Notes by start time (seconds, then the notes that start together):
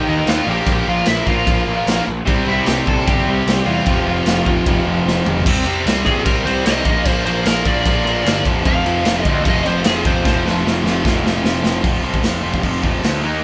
Already playing: D#3 A#3 D#4
0.08 D#2 D#4 D#5
0.26 D#2 F4 F5, snare, crash
0.45 A#1 A#2 F3 A#3
0.50 G4 G5
0.66 A#1, kick, crash
0.88 A#1 F4 F5
1.05 A#1 E4 E5, snare, crash
1.25 A#1 F3 A#3 F4 F5, kick
1.29 A#2
1.47 A#1, kick, crash
1.67 A#1
1.86 A#1 A#2 F3 A#3, snare, crash
2.08 A#1
2.26 C2 C3 G3 C4, kick, crash
2.47 C2 E4 E5
2.65 C2 G4 G5, snare, crash
2.87 C2 A4 A5, kick
3.06 G1 C3 G3 C4 G4 G5, kick, crash
3.27 C2
3.47 C2, snare, crash
3.65 E2 C3 G3 C4 F4 F5
3.84 F1 F2 C3 F3, kick, crash
4.06 F1
4.26 F1, snare, crash
4.46 F1, kick
4.66 F1 F2 C3 F3, kick, crash
4.86 F1
5.06 F1, snare
5.25 F1 F2 C3 F3, floor tom
5.46 C2 C3 G3 C4, kick, crash
5.66 C3 G3 C4, crash
5.85 C2 C3 G3 C4, snare, crash
6.05 A#1 C3 G3 C4 G#4, kick, crash
6.25 C2 C3 G3 C4 A#4, kick, crash
6.45 C2 C3 G3 C4 C5, crash
6.64 C2 C3 G3 C4 D#5, snare, crash
6.84 A#1 A#2 F3 A#3, kick, crash
7.04 A#1 A#2 F3 A#3, kick, crash
7.09 C5
7.25 A#1 A#2 F3 A#3 C5, crash
7.46 A#1 A#2 F3 A#3 A#4, snare, crash
7.64 A#1 A#2 F3 A#3 D5, kick, crash
7.85 A#1 A#2 F3 A#3, kick, crash
8.05 A#1 A#2 F3 A#3, crash
8.25 G1 A#2 F3 A#3, snare, crash
8.45 F1 F2 C3 F3, kick, crash
8.65 F1 F2 C3 F3 F5, kick, crash
8.85 F2 C3 F3, crash
9.04 F1 F2 C3 F3, snare, crash
9.22 D2 F2 C3 F3 D#5, kick, crash
9.44 F1 F2 C3 F3, kick, crash
9.49 D#5
9.65 F1 F2 C3 F3 C5, crash
9.83 F1 F2 C3 F3 G#4, snare, crash
10.04 F2 C3 F3 C5, kick, crash
10.25 F1 F2 C3 F3 C5, kick, snare
10.44 F1 F2 C3 F3, snare
10.64 F1 F2 C3 F3, snare
10.84 F1 F2 C3 F3, snare
11.05 F1 F2 C3 F3, kick, snare
11.24 F1 F2 C3 F3, snare
11.43 F1 F2 C3 F3, snare
11.63 F1 F2 C3 F3, snare
11.82 F1 F2 C3 F3, kick, open hi-hat
12.02 C2 F2 C3 F3
12.14 kick
12.22 F1 F2 C3 F3, snare, open hi-hat
12.42 F1 F2 C3 F3
12.54 kick
12.63 F1 F2 C3 F3, kick, open hi-hat
12.82 F1 F2 C3 F3, kick
13.03 D2 F2 C3 F3, snare, open hi-hat
13.23 D#2 D#3 A#3 D#4